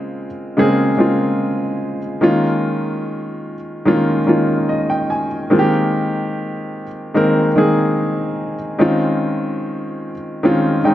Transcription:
0.00 0.25 C#3 medium
0.00 0.25 G#3 medium
0.00 0.26 A#3 medium
0.00 0.26 C4 medium
0.00 0.26 F4 medium
0.57 0.90 C#3 medium
0.57 0.91 G#3 medium
0.57 0.91 A#3 medium
0.57 0.91 C4 medium
0.57 0.92 G#4 loud
0.98 1.97 C#3 medium
0.98 1.98 G#3 medium
0.98 1.98 A#3 medium
0.98 1.98 C4 medium
0.98 1.99 F4 medium
2.21 3.54 D#3 medium
2.21 3.54 G#3 medium
2.21 3.54 A#3 medium
2.21 3.55 C#4 medium
2.21 3.55 F4 loud
3.85 4.19 D#3 medium
3.85 4.19 G#3 medium
3.85 4.20 A#3 medium
3.85 4.20 C#4 medium
3.85 4.20 F4 loud
4.27 5.26 D#3 medium
4.27 5.26 G#3 medium
4.27 5.27 A#3 medium
4.27 5.27 C#4 medium
4.27 5.27 F4 medium
4.69 4.88 D#5 medium
4.90 5.09 G5 medium
5.10 5.48 G#5 medium
5.50 6.83 D#3 medium
5.50 6.83 G#3 medium
5.50 6.83 A#3 medium
5.50 6.83 C4 medium
5.50 5.58 F4 medium
5.59 6.87 G4 loud
7.14 7.48 D#3 medium
7.14 7.48 G#3 medium
7.14 7.48 A#3 medium
7.14 7.49 C4 medium
7.14 7.49 A#4 loud
7.55 8.55 D#3 medium
7.55 8.55 G#3 medium
7.55 8.56 A#3 medium
7.55 8.56 C4 medium
7.55 8.56 G#4 medium
8.79 10.11 D#3 medium
8.79 10.11 G#3 medium
8.79 10.12 C4 medium
8.79 10.12 C#4 medium
8.79 10.13 F4 loud
10.43 10.77 D#3 medium
10.43 10.77 G#3 medium
10.43 10.77 C4 medium
10.43 10.78 C#4 medium
10.43 10.78 F4 loud
10.84 10.94 D#3 medium
10.84 10.94 G#3 medium
10.84 10.94 C4 medium
10.84 10.94 C#4 medium
10.84 10.94 D#4 medium
10.84 10.94 G5 medium

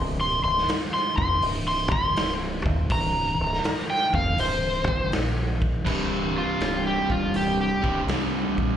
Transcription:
0.00 0.41 C1 loud
0.21 0.43 C6 loud
0.43 0.66 C1 medium
0.43 0.68 C6 loud
0.58 snare soft
0.68 muted fingered electric bass stroke soft
0.68 snare loud
0.68 open hi-hat medium
0.94 1.17 C6 loud
1.18 1.41 F1 loud
1.18 1.42 C6 loud
1.18 kick medium
1.42 1.88 C1 medium
1.42 open hi-hat medium
1.68 1.91 C6 medium
1.91 2.14 F#1 medium
1.91 2.32 C6 loud
1.91 kick medium
2.16 2.62 C1 medium
2.16 snare loud
2.16 open hi-hat medium
2.65 2.88 D#1 loud
2.65 kick medium
2.90 3.36 C1 loud
2.90 3.86 A#5 loud
2.90 kick loud
2.90 open hi-hat medium
3.40 3.62 C1 medium
3.53 snare soft
3.64 muted fingered electric bass stroke soft
3.64 snare loud
3.64 open hi-hat medium
3.90 4.13 G5 loud
4.14 4.36 F1 medium
4.14 4.38 F5 medium
4.14 kick medium
4.38 4.84 C1 medium
4.38 5.11 C5 loud
4.38 open hi-hat medium
4.88 5.10 F#1 loud
4.88 kick loud
5.12 5.82 A#1 loud
5.12 snare loud
5.12 open hi-hat medium
5.62 kick medium
5.85 6.42 C1 medium
5.85 7.80 C2 medium
5.85 7.81 G2 medium
5.85 7.81 C3 loud
5.85 kick loud
5.85 crash loud
6.38 6.84 F4 medium
6.60 6.98 C1 medium
6.60 snare loud
6.60 open hi-hat medium
6.87 7.09 G4 medium
7.10 7.28 C1 medium
7.10 7.34 F4 medium
7.10 kick medium
7.34 7.71 C1 medium
7.34 7.59 G4 medium
7.34 open hi-hat medium
7.61 8.00 G4 medium
7.82 8.02 C1 medium
7.82 8.06 C2 medium
7.82 8.07 G2 medium
7.82 8.06 C3 medium
7.82 kick medium
8.07 8.45 C2 medium
8.07 8.77 C2 medium
8.07 8.77 G2 medium
8.07 8.77 C3 medium
8.07 snare loud
8.07 open hi-hat medium
8.57 8.77 A#1 medium
8.57 kick medium

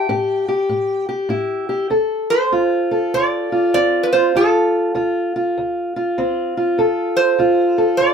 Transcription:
0.00 1.06 G5 loud
0.09 0.66 A2 medium
0.09 0.47 G4 medium
0.48 1.07 G4 medium
0.69 1.26 A2 medium
1.09 1.68 G4 medium
1.29 1.86 A2 medium
1.29 1.89 E4 medium
1.69 1.89 G4 medium
1.90 2.47 D2 medium
1.90 2.91 A4 medium
2.30 3.16 C5 loud
2.52 3.09 D2 medium
2.52 3.52 F4 medium
2.91 6.41 A4 medium
3.14 3.70 D2 medium
3.14 3.73 D5 medium
3.52 4.13 F4 medium
3.74 4.30 D2 medium
3.74 4.38 C4 medium
3.74 4.05 D5 medium
4.03 4.13 B4 medium
4.13 4.35 F4 medium
4.13 4.35 C5 medium
4.35 4.91 D2 medium
4.35 4.95 F4 medium
4.35 6.14 A4 medium
4.95 5.52 D2 medium
4.95 5.35 F4 medium
5.36 5.96 F4 medium
5.58 6.13 D2 medium
5.96 6.57 F4 medium
6.18 6.74 D2 medium
6.18 6.81 C4 medium
6.57 7.39 F4 medium
6.78 7.34 D2 medium
6.78 7.78 A4 medium
7.17 7.97 C5 medium
7.39 7.95 D2 medium
7.39 8.14 F4 medium
7.78 8.14 A4 medium
7.97 8.14 D2 medium
7.97 8.14 D5 medium

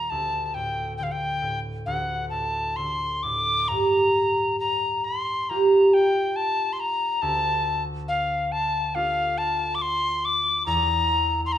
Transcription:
0.00 0.15 D#2 medium
0.00 0.15 D#3 soft
0.00 0.61 A#3 soft
0.00 0.11 A#5 medium
0.10 1.86 D2 soft
0.10 0.46 A5 medium
0.46 0.56 A5 soft
0.54 1.02 A2 soft
0.54 0.97 G5 medium
0.97 1.46 D3 soft
0.97 1.05 G5 medium
1.03 1.13 F5 medium
1.12 1.60 G5 medium
1.42 1.90 A2 soft
1.86 3.74 D2 soft
1.86 2.28 F#5 medium
2.30 2.82 A2 soft
2.30 2.78 A5 medium
2.76 3.29 D3 soft
2.76 3.24 C6 medium
3.23 3.74 A2 soft
3.23 3.70 D6 medium
3.68 7.28 G2 soft
3.68 4.59 A#5 medium
4.60 5.06 A#5 medium
5.05 5.51 C6 medium
5.49 8.71 A#3 soft
5.49 8.03 F4 soft
5.49 7.86 G4 soft
5.49 5.95 A#5 medium
5.94 6.38 G5 medium
6.36 6.74 A5 medium
6.73 6.81 C6 medium
6.80 7.23 A#5 medium
7.22 10.72 D2 medium
7.22 7.83 A5 medium
8.08 8.53 F5 medium
8.52 8.96 A5 medium
8.95 11.58 A3 soft
8.95 11.58 D4 soft
8.95 10.73 F4 soft
8.95 9.39 F5 medium
9.38 9.76 A5 medium
9.75 9.83 D6 medium
9.82 10.27 C6 medium
10.25 10.66 D6 medium
10.66 11.58 E2 medium
10.66 11.41 A#5 medium
11.46 11.54 C6 medium
11.52 11.58 A#5 medium

